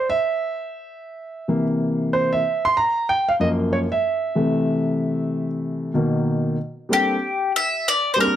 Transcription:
0.10 1.64 E5 loud
1.48 2.40 C3 medium
1.48 2.40 E3 medium
1.48 2.40 A#3 medium
2.13 2.31 C5 medium
2.33 2.65 E5 loud
2.65 2.77 C6 loud
2.77 3.09 A#5 loud
3.09 3.28 G5 loud
3.29 3.34 F5 loud
3.40 3.85 F#2 medium
3.40 3.85 F3 medium
3.40 3.85 A#3 medium
3.40 3.48 D#5 loud
3.73 3.78 C#5 medium
3.92 5.47 E5 loud
4.35 5.91 C3 medium
4.35 5.91 E3 medium
4.35 5.91 A3 medium
5.94 6.55 B2 medium
5.94 6.55 D#3 medium
5.94 6.55 A#3 medium
6.89 7.14 G3 medium
6.89 7.15 A#3 medium
6.89 7.15 C4 medium
6.89 7.15 D4 medium
6.89 7.51 G4 medium
6.89 7.15 A4 medium
7.56 7.88 E5 loud
7.88 8.13 D5 loud
8.14 8.36 G3 medium
8.14 8.36 A#3 medium
8.14 8.36 C4 medium
8.14 8.18 C5 medium
8.19 8.36 D4 medium
8.19 8.26 G#4 medium
8.19 8.36 A#4 medium
8.26 8.36 A#4 medium

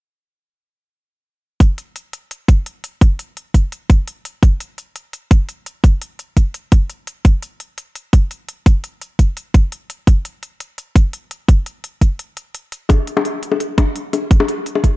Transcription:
1.60 kick loud
1.60 closed hi-hat medium
1.78 closed hi-hat medium
1.96 closed hi-hat medium
2.13 closed hi-hat medium
2.31 closed hi-hat medium
2.48 kick loud
2.48 closed hi-hat medium
2.66 closed hi-hat medium
2.84 closed hi-hat medium
3.01 kick loud
3.01 closed hi-hat medium
3.19 closed hi-hat medium
3.37 closed hi-hat medium
3.54 kick medium
3.54 closed hi-hat medium
3.72 closed hi-hat medium
3.90 kick loud
3.90 closed hi-hat medium
4.08 closed hi-hat medium
4.25 closed hi-hat medium
4.43 kick loud
4.43 closed hi-hat medium
4.60 closed hi-hat medium
4.78 closed hi-hat medium
4.96 closed hi-hat medium
5.13 closed hi-hat medium
5.31 kick loud
5.31 closed hi-hat medium
5.49 closed hi-hat medium
5.66 closed hi-hat medium
5.84 kick loud
5.84 closed hi-hat medium
6.02 closed hi-hat medium
6.19 closed hi-hat medium
6.37 kick medium
6.37 closed hi-hat medium
6.54 closed hi-hat medium
6.72 kick loud
6.72 closed hi-hat medium
6.90 closed hi-hat medium
7.07 closed hi-hat medium
7.25 kick loud
7.25 closed hi-hat medium
7.42 closed hi-hat medium
7.60 closed hi-hat medium
7.78 closed hi-hat medium
7.95 closed hi-hat medium
8.13 kick loud
8.13 closed hi-hat medium
8.31 closed hi-hat medium
8.49 closed hi-hat medium
8.66 kick loud
8.66 closed hi-hat medium
8.84 closed hi-hat medium
9.02 closed hi-hat medium
9.19 kick medium
9.19 closed hi-hat medium
9.37 closed hi-hat medium
9.54 kick loud
9.54 closed hi-hat medium
9.72 closed hi-hat medium
9.90 closed hi-hat medium
10.07 kick loud
10.07 closed hi-hat medium
10.25 closed hi-hat medium
10.43 closed hi-hat medium
10.60 closed hi-hat medium
10.78 closed hi-hat medium
10.96 kick loud
10.96 closed hi-hat medium
11.13 closed hi-hat medium
11.31 closed hi-hat medium
11.48 kick loud
11.48 closed hi-hat medium
11.66 closed hi-hat medium
11.84 closed hi-hat medium
12.01 kick medium
12.01 closed hi-hat medium
12.19 closed hi-hat medium
12.37 closed hi-hat medium
12.55 closed hi-hat medium
12.72 closed hi-hat medium
12.89 kick loud
12.89 closed hi-hat medium
12.89 high bongo soft
13.07 closed hi-hat medium
13.17 high bongo medium
13.25 closed hi-hat medium
13.43 closed hi-hat medium
13.52 high bongo medium
13.60 closed hi-hat medium
13.78 kick loud
13.78 closed hi-hat medium
13.78 high bongo medium
13.96 closed hi-hat medium
14.13 closed hi-hat medium
14.13 high bongo soft
14.31 kick loud
14.31 closed hi-hat medium
14.40 high bongo medium
14.48 closed hi-hat medium
14.66 closed hi-hat medium
14.75 high bongo soft
14.84 kick medium
14.84 closed hi-hat medium

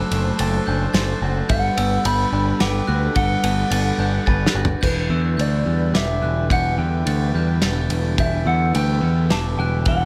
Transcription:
0.00 1.46 D3 medium
0.00 1.50 F#3 medium
0.00 0.10 A3 medium
0.00 1.46 A3 medium
0.00 0.66 D4 medium
0.00 0.97 F#4 medium
0.00 4.79 A4 medium
0.00 0.67 C5 medium
0.00 1.46 C5 medium
0.00 0.91 A5 medium
0.00 0.39 F#6 medium
0.11 0.30 F#1 medium
0.11 0.38 A3 medium
0.11 ride medium
0.39 0.58 F#1 medium
0.39 1.50 A3 medium
0.39 0.67 A6 medium
0.39 ride medium
0.67 0.86 F#1 medium
0.67 2.32 D4 medium
0.67 0.94 G6 medium
0.94 1.13 F#1 medium
0.94 1.50 C5 medium
0.94 1.49 A6 medium
0.94 snare medium
0.94 ride medium
1.22 1.41 F#1 medium
1.22 1.53 F#4 medium
1.49 1.69 G1 medium
1.49 4.78 D3 medium
1.49 4.80 G3 medium
1.49 2.91 G3 medium
1.49 4.79 B4 medium
1.49 2.07 F#5 medium
1.49 1.77 G6 medium
1.49 kick medium
1.49 ride medium
1.77 1.97 G1 medium
1.77 2.05 B3 medium
1.77 2.05 E6 medium
1.77 ride medium
2.05 2.24 G1 medium
2.05 3.43 B3 medium
2.05 2.63 B5 medium
2.05 2.61 G6 medium
2.05 ride medium
2.32 2.52 G1 medium
2.32 3.72 D4 medium
2.60 2.80 G1 medium
2.60 3.99 B4 medium
2.60 3.16 G5 medium
2.60 2.88 D6 medium
2.60 snare medium
2.60 ride medium
2.87 3.08 D2 medium
2.87 4.27 F#4 medium
2.87 3.16 F#6 medium
3.15 3.35 G1 medium
3.15 4.55 G3 medium
3.15 4.23 F#5 medium
3.15 3.71 G7 medium
3.15 kick medium
3.15 ride medium
3.44 3.63 G1 medium
3.44 3.71 B3 medium
3.44 ride medium
3.70 3.90 G1 medium
3.70 4.83 B3 medium
3.70 3.99 A6 medium
3.70 ride medium
3.98 4.18 G1 medium
3.98 4.83 D4 medium
3.98 4.27 G6 medium
4.26 4.46 G1 medium
4.26 4.83 B4 medium
4.26 4.83 A6 medium
4.26 kick medium
4.46 snare medium
4.54 4.74 G1 medium
4.54 4.83 F#4 medium
4.65 floor tom loud
4.79 5.09 E1 medium
4.79 10.05 D3 medium
4.79 6.25 E3 medium
4.79 10.05 G3 soft
4.79 10.05 E4 medium
4.79 10.05 B4 medium
4.79 5.10 G6 medium
4.79 kick medium
4.79 crash medium
4.84 5.41 B4 medium
5.10 5.36 E2 medium
5.10 5.37 D3 medium
5.10 5.38 E6 medium
5.37 5.64 D2 medium
5.37 6.21 D3 medium
5.37 5.92 D5 medium
5.37 5.94 G6 medium
5.37 ride soft
5.66 5.92 E2 medium
5.66 7.35 G3 soft
5.94 6.20 E1 medium
5.94 7.62 B3 medium
5.94 6.52 E5 medium
5.94 6.22 D6 medium
5.94 snare medium
5.94 ride soft
6.22 6.48 E1 medium
6.22 6.77 D3 medium
6.22 6.50 F#6 medium
6.50 6.76 E1 medium
6.50 7.94 E3 medium
6.50 6.77 F#5 medium
6.50 7.07 G6 medium
6.50 kick medium
6.50 ride soft
6.78 7.04 E2 medium
6.78 7.05 D3 medium
6.78 7.86 G5 medium
7.06 7.32 D2 medium
7.06 7.90 D3 medium
7.06 7.34 A6 medium
7.06 ride medium
7.34 7.60 E2 medium
7.34 9.01 G3 soft
7.34 7.63 G6 medium
7.62 7.88 E1 medium
7.62 9.29 B3 medium
7.62 8.18 A6 medium
7.62 snare medium
7.62 ride medium
7.90 8.16 E1 medium
7.90 8.45 D3 medium
7.90 ride medium
8.18 8.44 E1 medium
8.18 9.58 E3 medium
8.18 8.48 E5 medium
8.18 8.46 G6 medium
8.18 kick medium
8.18 ride soft
8.46 8.72 E2 medium
8.46 8.73 D3 medium
8.46 8.75 F#5 medium
8.46 8.74 E6 medium
8.74 9.00 D2 medium
8.74 9.57 D3 medium
8.74 9.27 G5 medium
8.74 9.30 G6 medium
8.74 ride medium
9.02 9.28 E2 medium
9.02 10.05 G3 medium
9.29 9.56 E1 medium
9.29 10.05 B3 medium
9.29 9.58 A5 medium
9.29 9.58 D6 medium
9.29 snare medium
9.29 ride medium
9.57 9.83 E1 medium
9.57 10.05 D3 medium
9.57 9.84 G5 medium
9.57 9.87 F#6 medium
9.85 10.05 E1 medium
9.85 10.05 E3 medium
9.85 10.05 F#5 medium
9.85 10.05 G7 medium
9.85 kick medium
9.85 ride soft

